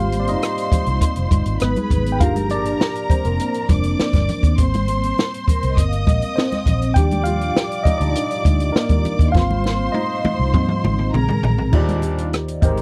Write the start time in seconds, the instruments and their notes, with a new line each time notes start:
Already playing: fingered electric bass G#1, tine electric piano G3 A#3 C4 F4 F5, vibraphone G4, string section C5 C6
0.12 closed hi-hat
0.20 tine electric piano D5
0.27 tine electric piano D#4 D#5, closed hi-hat
0.42 cross-stick, closed hi-hat
0.58 closed hi-hat
0.72 muted fingered electric bass stroke, kick, closed hi-hat, high conga, low conga
0.86 fingered electric bass C2, closed hi-hat
1.01 kick, closed hi-hat, muted conga
1.16 fingered electric bass F1, closed hi-hat
1.31 fingered electric bass G1, kick, closed hi-hat, muted conga, high conga
1.46 fingered electric bass G#1, closed hi-hat
1.60 fingered electric bass G#1, tine electric piano F#3 G#3 B3 B4, vibraphone D#4, string section B4 B5, cross-stick, closed hi-hat
1.76 closed hi-hat, high conga
1.80 vibraphone G#4
1.90 fingered electric bass G#1, kick, closed hi-hat, low conga
2.06 closed hi-hat
2.12 tine electric piano G5
2.19 fingered electric bass G1, tine electric piano F3 A#3 D4 F4 F5, vibraphone G4, string section A#4 A#5, kick, closed hi-hat, muted conga
2.36 closed hi-hat, high conga
2.50 tine electric piano D4 D5, closed hi-hat, muted conga
2.65 closed hi-hat
2.81 snare, muted conga
2.95 closed hi-hat
3.10 tine electric piano C4 C5, muted fingered electric bass stroke, kick, closed hi-hat, muted conga, high conga, low conga
3.25 fingered electric bass F1, tine electric piano A#3 A#4, closed hi-hat
3.40 closed hi-hat, muted conga
3.54 closed hi-hat
3.69 fingered electric bass F1, tine electric piano F3 A#3 D4, string section D5 D6, kick, closed hi-hat, high conga
3.83 closed hi-hat
4.00 muted fingered electric bass stroke, snare, muted conga
4.13 fingered electric bass G1, kick, snare, closed hi-hat, high conga
4.28 closed hi-hat, low conga
4.43 fingered electric bass D#2, kick, closed hi-hat
4.58 fingered electric bass G#1, tine electric piano G3 A#3 C4, string section C5 C6, kick, closed hi-hat
4.74 closed hi-hat, high conga
4.88 closed hi-hat, muted conga
5.03 closed hi-hat
5.18 snare, muted conga
5.34 closed hi-hat
5.48 vibraphone A#4, muted fingered electric bass stroke, kick, closed hi-hat, high conga, low conga
5.63 fingered electric bass C2, closed hi-hat
5.70 vibraphone D#5
5.77 fingered electric bass G1, string section D#5 D#6, kick, closed hi-hat, muted conga
5.88 vibraphone F5
5.92 closed hi-hat
6.07 fingered electric bass A#1, kick, closed hi-hat, high conga
6.22 closed hi-hat
6.36 tine electric piano C4 C5, snare, muted conga
6.51 snare, closed hi-hat, high conga
6.66 fingered electric bass A#1, kick, closed hi-hat, muted conga, low conga
6.82 closed hi-hat
6.94 fingered electric bass D#2, tine electric piano F3 G3 D4 G4 G5, string section D5 D6, kick, closed hi-hat
7.11 closed hi-hat, high conga
7.24 tine electric piano F4 F5, closed hi-hat
7.41 closed hi-hat
7.56 snare, muted conga
7.71 closed hi-hat
7.83 tine electric piano D#4 D#5, muted fingered electric bass stroke, kick, closed hi-hat, muted conga, high conga, low conga
7.98 fingered electric bass D2, tine electric piano D4 D5, closed hi-hat
8.15 closed hi-hat
8.31 closed hi-hat
8.45 fingered electric bass D2, kick, closed hi-hat, high conga
8.60 closed hi-hat
8.72 tine electric piano A#3 A#4, snare
8.89 fingered electric bass D#2, kick, closed hi-hat, high conga
9.05 closed hi-hat, low conga
9.19 fingered electric bass D#2, kick, closed hi-hat
9.32 fingered electric bass G#1, tine electric piano G3 A#3 C4 F4 F5, string section C5 C6, kick, muted conga, low conga
9.36 snare
9.51 high conga
9.64 snare, muted conga
9.92 tine electric piano D#4 D#5, high tom, muted conga
10.25 muted fingered electric bass stroke, high tom, high conga, low conga
10.39 fingered electric bass C2
10.53 fingered electric bass G#2, tine electric piano G3 A#3 C4, kick, mid tom, muted conga
10.68 mid tom
10.84 fingered electric bass G#1, mid tom, muted conga, high conga
10.99 mid tom
11.13 fingered electric bass A#1, tine electric piano D#3 G#3 C4, vibraphone G#4, string section A#4 A#5, mid tom, muted conga
11.28 floor tom, high conga
11.43 fingered electric bass A#1, floor tom, low conga
11.58 floor tom
11.72 fingered electric bass D#2, horn section A#2 G3 D4, tine electric piano D#3 D#4 F4 G4 C5 D5, kick, crash, muted conga, low conga
11.89 closed hi-hat, high conga
12.02 vibraphone D5, closed hi-hat, muted conga
12.18 closed hi-hat
12.33 cross-stick, closed hi-hat
12.48 closed hi-hat
12.62 fingered electric bass G#1, horn section C3 G#3 D#4, tine electric piano G#3 D#4 G4 A#4 C5, kick, closed hi-hat, muted conga, high conga, low conga
12.77 closed hi-hat